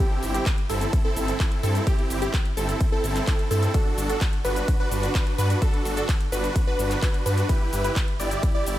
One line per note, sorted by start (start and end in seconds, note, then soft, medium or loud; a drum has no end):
0.00 0.32 C4 loud
0.00 0.32 E4 medium
0.00 0.32 G4 loud
0.23 0.39 G1 loud
0.23 open hi-hat loud
0.23 cabasa medium
0.34 0.47 C4 medium
0.34 0.47 E4 medium
0.34 0.47 G4 loud
0.34 0.47 G4 medium
0.34 closed hi-hat medium
0.34 cabasa soft
0.46 kick loud
0.46 clap loud
0.46 closed hi-hat medium
0.46 ride medium
0.46 cabasa soft
0.58 closed hi-hat soft
0.70 0.86 G1 loud
0.70 1.02 C4 medium
0.70 1.02 E4 medium
0.70 1.02 A4 medium
0.70 open hi-hat loud
0.70 cabasa medium
0.81 closed hi-hat medium
0.81 cabasa soft
0.93 kick loud
0.93 closed hi-hat medium
0.93 ride medium
0.93 cabasa soft
1.05 1.38 C4 loud
1.05 1.38 E4 medium
1.05 1.38 A4 loud
1.16 1.33 G1 loud
1.16 open hi-hat loud
1.16 cabasa medium
1.28 closed hi-hat medium
1.28 cabasa soft
1.40 1.60 E4 medium
1.40 1.60 A4 medium
1.40 kick loud
1.40 clap loud
1.40 closed hi-hat medium
1.40 ride medium
1.40 cabasa soft
1.52 closed hi-hat soft
1.63 1.80 G2 medium
1.63 1.84 C4 medium
1.63 1.84 E4 medium
1.63 1.84 A4 loud
1.63 1.84 A4 medium
1.63 open hi-hat loud
1.63 cabasa medium
1.75 closed hi-hat medium
1.75 cabasa soft
1.87 2.19 C4 loud
1.87 2.19 E4 medium
1.87 2.19 G4 loud
1.87 kick loud
1.87 closed hi-hat medium
1.87 ride medium
1.87 cabasa soft
1.99 closed hi-hat soft
2.10 2.27 G1 loud
2.10 open hi-hat loud
2.10 cabasa medium
2.22 2.35 C4 medium
2.22 2.35 E4 medium
2.22 2.35 G4 medium
2.22 closed hi-hat medium
2.22 cabasa soft
2.34 kick loud
2.34 clap loud
2.34 closed hi-hat medium
2.34 ride medium
2.34 cabasa soft
2.45 closed hi-hat soft
2.57 2.74 G1 loud
2.57 2.89 C4 medium
2.57 2.89 E4 medium
2.57 2.89 A4 medium
2.57 open hi-hat loud
2.57 cabasa medium
2.69 closed hi-hat soft
2.69 cabasa soft
2.81 kick loud
2.81 closed hi-hat medium
2.81 ride medium
2.81 cabasa soft
2.92 3.25 C4 loud
2.92 3.25 E4 medium
2.92 3.25 A4 loud
3.04 3.20 G1 loud
3.04 open hi-hat loud
3.04 cabasa medium
3.16 clap soft
3.16 closed hi-hat soft
3.16 cabasa soft
3.27 3.47 C4 medium
3.27 3.47 E4 medium
3.27 3.47 A4 medium
3.27 kick loud
3.27 clap loud
3.27 closed hi-hat medium
3.27 ride medium
3.27 cabasa soft
3.39 closed hi-hat soft
3.51 3.67 G2 medium
3.51 3.71 C4 medium
3.51 3.72 E4 medium
3.51 3.71 A4 loud
3.51 3.71 A4 medium
3.51 open hi-hat loud
3.51 cabasa medium
3.63 closed hi-hat medium
3.63 cabasa soft
3.74 4.07 D4 loud
3.74 4.07 F#4 medium
3.74 4.07 A4 loud
3.74 kick loud
3.74 closed hi-hat medium
3.74 ride medium
3.74 cabasa soft
3.98 4.14 G1 loud
3.98 open hi-hat loud
3.98 cabasa medium
4.09 4.22 D4 medium
4.09 4.22 F#4 medium
4.09 4.22 A4 medium
4.09 closed hi-hat medium
4.09 cabasa soft
4.21 kick loud
4.21 clap loud
4.21 closed hi-hat medium
4.21 ride medium
4.21 cabasa soft
4.33 closed hi-hat soft
4.45 4.61 G1 loud
4.45 4.77 D4 medium
4.45 4.77 F#4 medium
4.45 4.77 B4 medium
4.45 open hi-hat loud
4.45 cabasa medium
4.56 closed hi-hat soft
4.56 cabasa soft
4.68 kick loud
4.68 closed hi-hat medium
4.68 ride medium
4.68 cabasa soft
4.80 5.13 D4 medium
4.80 5.13 F#4 medium
4.80 5.13 B4 loud
4.92 5.08 G1 loud
4.92 open hi-hat loud
4.92 cabasa medium
5.03 closed hi-hat medium
5.03 cabasa soft
5.15 5.35 D4 medium
5.15 5.35 F#4 medium
5.15 5.35 B4 medium
5.15 kick loud
5.15 clap loud
5.15 closed hi-hat medium
5.15 ride medium
5.15 cabasa soft
5.27 closed hi-hat soft
5.38 5.55 G2 medium
5.38 5.59 D4 medium
5.38 5.59 F#4 medium
5.38 5.59 B4 loud
5.38 5.59 B4 medium
5.38 open hi-hat loud
5.38 cabasa medium
5.50 closed hi-hat medium
5.50 cabasa soft
5.62 5.94 D4 loud
5.62 5.94 F#4 medium
5.62 5.94 A4 loud
5.62 kick loud
5.62 closed hi-hat medium
5.62 ride medium
5.62 cabasa soft
5.74 closed hi-hat soft
5.85 6.02 G1 medium
5.85 open hi-hat loud
5.85 cabasa medium
5.97 6.10 D4 medium
5.97 6.10 F#4 medium
5.97 6.10 A4 medium
5.97 closed hi-hat medium
5.97 cabasa soft
6.09 kick loud
6.09 clap loud
6.09 closed hi-hat medium
6.09 ride medium
6.09 cabasa soft
6.21 closed hi-hat soft
6.32 6.49 G1 loud
6.32 6.65 D4 medium
6.32 6.64 F#4 medium
6.32 6.64 B4 medium
6.32 6.65 B4 medium
6.32 open hi-hat loud
6.32 cabasa medium
6.44 closed hi-hat medium
6.44 cabasa soft
6.56 kick loud
6.56 closed hi-hat medium
6.56 ride medium
6.56 cabasa soft
6.67 7.00 D4 loud
6.67 7.00 F#4 medium
6.67 7.00 B4 loud
6.79 6.95 G1 loud
6.79 open hi-hat loud
6.79 cabasa medium
6.91 clap soft
6.91 closed hi-hat medium
6.91 cabasa soft
7.02 7.22 B4 medium
7.02 kick loud
7.02 clap loud
7.02 closed hi-hat medium
7.02 ride medium
7.02 cabasa soft
7.14 closed hi-hat soft
7.26 7.42 G2 medium
7.26 7.47 D4 medium
7.26 7.47 F#4 medium
7.26 7.46 B4 medium
7.26 7.47 B4 loud
7.26 open hi-hat loud
7.26 cabasa medium
7.38 closed hi-hat medium
7.38 cabasa medium
7.49 7.82 E4 loud
7.49 7.82 G4 loud
7.49 7.82 B4 loud
7.49 kick loud
7.49 closed hi-hat medium
7.49 ride medium
7.49 cabasa soft
7.73 7.89 G1 loud
7.73 open hi-hat loud
7.73 cabasa medium
7.84 7.97 E4 medium
7.84 7.97 G4 medium
7.84 7.97 B4 medium
7.84 closed hi-hat medium
7.84 cabasa soft
7.96 kick loud
7.96 clap loud
7.96 closed hi-hat medium
7.96 ride medium
7.96 cabasa soft
8.08 closed hi-hat soft
8.20 8.36 G1 loud
8.20 8.52 E4 medium
8.20 8.52 G4 medium
8.20 8.52 D5 medium
8.20 open hi-hat loud
8.20 cabasa medium
8.31 closed hi-hat medium
8.31 cabasa soft
8.43 kick loud
8.43 closed hi-hat medium
8.43 ride medium
8.43 cabasa soft
8.55 8.79 E4 loud
8.55 8.79 G4 medium
8.55 8.79 D5 loud
8.66 8.79 G1 loud
8.66 open hi-hat loud
8.66 cabasa medium